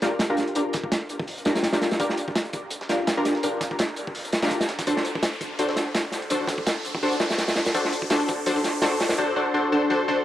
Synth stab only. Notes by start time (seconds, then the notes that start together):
0.02 D4 F4 G4 A#4
0.30 D4 F4 G4 A#4
0.56 D4 F4 G4 A#4
1.46 D4 F4 G4 A#4
1.74 D4 F4 G4 A#4
2.00 D4 F4 G4 A#4
2.89 D4 F4 G4 A#4
3.17 D4 F4 G4 A#4
3.43 D4 F4 G4 A#4
4.43 D4 F4 G4 A#4
4.87 D4 F#4 A4 C5
5.59 D4 F#4 A4 C5
6.31 D4 F#4 A4 C5
7.03 D4 F#4 A4 C5
7.74 D4 F#4 A4 C5
8.10 D4 F#4 A4 C5
8.46 D4 F#4 A4 C5
8.82 D4 F#4 A4 C5
9.18 D4 F#4 A4 C5
9.36 D4 F#4 A4 C5
9.54 D4 F#4 A4 C5
9.72 D4 F#4 A4 C5
9.90 D4 F#4 A4 C5
10.08 D4 F#4 A4 C5